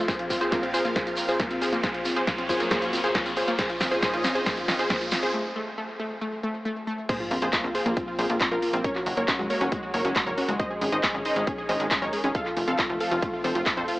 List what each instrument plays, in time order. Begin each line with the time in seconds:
Already playing: supersaw synth F3 C4, riser
0.08 supersaw synth A#2 A#4 F5, synth arpeggio sound A#3, synth pluck G#4 C5, kick, snare, closed hi-hat, shekere
0.19 synth pluck F4, closed hi-hat
0.30 synth arpeggio sound C4, synth pluck F4, kick, open hi-hat, shekere
0.41 synth arpeggio sound F4, synth pluck G#4 C5, closed hi-hat, shekere
0.52 synth arpeggio sound A#3, synth pluck F4, kick, snare, closed hi-hat, shekere
0.63 synth arpeggio sound C4, synth pluck F4, closed hi-hat
0.74 synth arpeggio sound F4, synth pluck G#4 C5, open hi-hat, shekere
0.85 synth arpeggio sound A#3, synth pluck F4, closed hi-hat, shekere
0.96 synth arpeggio sound A#3, synth pluck G#4 C5, kick, snare, closed hi-hat, shekere
1.07 synth pluck F4, closed hi-hat, shekere
1.17 synth arpeggio sound C4, synth pluck F4, open hi-hat, shekere
1.29 synth arpeggio sound F4, synth pluck G#4 C5, closed hi-hat, shekere
1.40 synth arpeggio sound A#3, synth pluck F4, kick, snare, closed hi-hat, shekere
1.50 synth arpeggio sound C4, synth pluck F4, closed hi-hat, shekere
1.62 synth arpeggio sound F4, synth pluck G#4 C5, open hi-hat, shekere
1.72 synth arpeggio sound A#3, synth pluck F4, closed hi-hat, shekere
1.83 supersaw synth F#2 F#3 A#3 G#4 C#5, synth arpeggio sound A#3, synth pluck G#4 C5, kick, snare, closed hi-hat, shekere
1.94 synth pluck F4, closed hi-hat
2.05 synth arpeggio sound C4, synth pluck F4, open hi-hat, shekere
2.16 synth arpeggio sound F4, synth pluck G#4 C5, closed hi-hat, shekere
2.27 synth arpeggio sound A#3, synth pluck F4, kick, snare, closed hi-hat, shekere
2.38 synth arpeggio sound C4, synth pluck F4, closed hi-hat
2.49 synth arpeggio sound F4, synth pluck G#4 C5, kick, open hi-hat, shekere
2.60 synth arpeggio sound A#3, synth pluck F4, closed hi-hat, shekere
2.71 synth arpeggio sound A#3, synth pluck G#4 C5, kick, snare, closed hi-hat, shekere
2.82 synth pluck F4, closed hi-hat, shekere
2.93 synth arpeggio sound C4, synth pluck F4, open hi-hat, shekere
3.04 synth arpeggio sound F4, synth pluck G#4 C5, closed hi-hat, shekere
3.15 synth arpeggio sound A#3, synth pluck F4, kick, snare, closed hi-hat, shekere
3.26 synth arpeggio sound C4, synth pluck F4, closed hi-hat, shekere
3.36 synth arpeggio sound F4, synth pluck G#4 C5, open hi-hat, shekere
3.47 synth arpeggio sound A#3, synth pluck F4, closed hi-hat, shekere
3.59 supersaw synth G#2 D#3 C#4 G#4 D#5, synth arpeggio sound A#3, synth pluck G#4 C5, kick, snare, closed hi-hat, shekere
3.70 synth pluck F4, closed hi-hat
3.80 synth arpeggio sound C4, synth pluck F4, kick, snare, open hi-hat, shekere
3.91 synth arpeggio sound F4, synth pluck G#4 C5, closed hi-hat, shekere
4.02 synth arpeggio sound A#3, synth pluck G#4 C5, kick, snare, closed hi-hat, shekere
4.13 synth pluck F4, closed hi-hat
4.24 synth arpeggio sound C4, synth pluck F4, snare, open hi-hat, shekere
4.35 synth arpeggio sound F4, synth pluck G#4 C5, closed hi-hat, shekere
4.46 synth arpeggio sound A#3, synth pluck G#4 C5, kick, snare, closed hi-hat, shekere
4.57 synth pluck F4, closed hi-hat, shekere
4.68 synth arpeggio sound C4, synth pluck F4, snare, open hi-hat, shekere
4.79 synth arpeggio sound F4, synth pluck G#4 C5, closed hi-hat, shekere
4.90 synth arpeggio sound A#3, synth pluck G#4 C5, kick, snare, closed hi-hat, shekere
5.00 synth pluck F4, closed hi-hat, shekere
5.11 synth arpeggio sound C4, synth pluck F4, snare, open hi-hat, shekere
5.23 synth arpeggio sound F4, synth pluck G#4 C5, closed hi-hat, shekere
5.34 synth arpeggio sound A3
5.56 synth arpeggio sound A3
5.78 synth arpeggio sound A3
6.00 synth arpeggio sound A3
6.21 synth arpeggio sound A3
6.43 synth arpeggio sound A3
6.65 synth arpeggio sound A3
6.87 synth arpeggio sound A3
7.09 supersaw synth F3 A#3 C4, synth arpeggio sound A#3, synth pluck G#4 C5, kick, closed hi-hat, crash, sub drop
7.20 synth pluck F4
7.31 analog synth bass A#1, synth arpeggio sound C4, synth pluck F4, open hi-hat
7.42 analog synth bass A#1, synth arpeggio sound F4, synth pluck G#4 C5, closed hi-hat
7.53 synth arpeggio sound A#3, synth pluck F4, kick, clap, closed hi-hat
7.64 analog synth bass A#1, synth arpeggio sound C4, synth pluck F4
7.75 synth arpeggio sound F4, synth pluck G#4 C5, open hi-hat
7.86 analog synth bass A#1, synth arpeggio sound A#3, synth pluck F4, closed hi-hat
7.97 synth arpeggio sound C4, synth pluck F4, kick, closed hi-hat
8.08 synth pluck F4
8.19 analog synth bass A#1, synth arpeggio sound F4, synth pluck G#4 C5, open hi-hat
8.29 analog synth bass A#1, synth arpeggio sound A#3, synth pluck F4, closed hi-hat
8.40 synth arpeggio sound C4, synth pluck F4, kick, clap, closed hi-hat
8.51 analog synth bass A#1, synth arpeggio sound F4, synth pluck F4 A#4
8.62 synth arpeggio sound A#3, synth pluck F4, open hi-hat
8.73 analog synth bass A#1, synth arpeggio sound C4, synth pluck F4, closed hi-hat
8.84 supersaw synth F#3 G#3, synth arpeggio sound C#4, synth pluck A#4 C#5, kick, closed hi-hat
8.95 synth pluck F#4, clap
9.06 analog synth bass F#1, synth arpeggio sound G#3, synth pluck F#4, open hi-hat
9.17 analog synth bass F#1, synth arpeggio sound A#3, synth pluck A#4 C#5, closed hi-hat
9.28 synth arpeggio sound C#4, synth pluck F#4, kick, clap, closed hi-hat
9.39 analog synth bass F#1, synth arpeggio sound G#3, synth pluck F#4
9.50 synth arpeggio sound A#3, synth pluck A#4 C#5, open hi-hat
9.61 analog synth bass F#1, synth arpeggio sound C#4, synth pluck F#4, closed hi-hat
9.72 synth arpeggio sound G#3, synth pluck F#4, kick, closed hi-hat
9.83 synth pluck F#4
9.94 analog synth bass F#1, synth arpeggio sound A#3, synth pluck A#4 C#5, open hi-hat
10.05 analog synth bass F#1, synth arpeggio sound C#4, synth pluck F#4, closed hi-hat
10.16 synth arpeggio sound G#3, synth pluck F#4, kick, clap, closed hi-hat
10.27 analog synth bass F#1, synth arpeggio sound A#3, synth pluck A#4 C#5
10.38 synth arpeggio sound C#4, synth pluck F#4, open hi-hat
10.48 analog synth bass F#1, synth arpeggio sound G#3, synth pluck F#4, closed hi-hat
10.59 supersaw synth D#3 C#4, synth arpeggio sound G#3, synth pluck C5 D#5, kick, closed hi-hat
10.70 synth pluck G#4
10.81 analog synth bass G#1, synth arpeggio sound C#4, synth pluck G#4, open hi-hat
10.92 analog synth bass G#1, synth arpeggio sound D#4, synth pluck C5 D#5, closed hi-hat
11.03 synth arpeggio sound G#3, synth pluck G#4, kick, clap, closed hi-hat
11.14 analog synth bass G#1, synth arpeggio sound C#4, synth pluck G#4
11.25 synth arpeggio sound D#4, synth pluck C5 D#5, open hi-hat
11.36 analog synth bass G#1, synth arpeggio sound G#3, synth pluck G#4, closed hi-hat
11.47 synth arpeggio sound C#4, synth pluck G#4, kick, closed hi-hat
11.58 synth pluck G#4
11.69 analog synth bass G#1, synth arpeggio sound D#4, synth pluck C5 D#5, open hi-hat
11.80 analog synth bass G#1, synth arpeggio sound G#3, synth pluck G#4, closed hi-hat
11.91 synth arpeggio sound C#4, synth pluck G#4, kick, clap, closed hi-hat
12.02 analog synth bass G#1, synth arpeggio sound D#4, synth pluck A#4 C#5
12.13 synth arpeggio sound G#3, synth pluck G#4, open hi-hat
12.24 analog synth bass G#1, synth arpeggio sound C#4, synth pluck G#4, closed hi-hat
12.35 supersaw synth F3 A3 C4, synth arpeggio sound F4, synth pluck A4 F5, kick, closed hi-hat
12.46 synth pluck F4, clap
12.57 analog synth bass F1, synth arpeggio sound A3, synth pluck F4, open hi-hat
12.68 analog synth bass F1, synth arpeggio sound C4, synth pluck A4 F5, closed hi-hat
12.79 synth arpeggio sound F4, synth pluck F4, kick, clap, closed hi-hat
12.89 analog synth bass F1, synth arpeggio sound A3, synth pluck F4
13.00 synth arpeggio sound C4, synth pluck A4 F5, open hi-hat
13.11 analog synth bass F1, synth arpeggio sound F4, synth pluck F4, closed hi-hat
13.22 synth arpeggio sound A3, synth pluck F4, kick, closed hi-hat
13.34 synth pluck F4
13.44 analog synth bass F1, synth arpeggio sound C4, synth pluck A4 C5, open hi-hat
13.55 analog synth bass F1, synth pluck F4, synth arpeggio sound F4, closed hi-hat
13.66 synth arpeggio sound A3, synth pluck F4, kick, clap, closed hi-hat
13.77 analog synth bass F2, synth arpeggio sound C4, synth pluck A4 C5
13.88 synth arpeggio sound F4, synth pluck F4, open hi-hat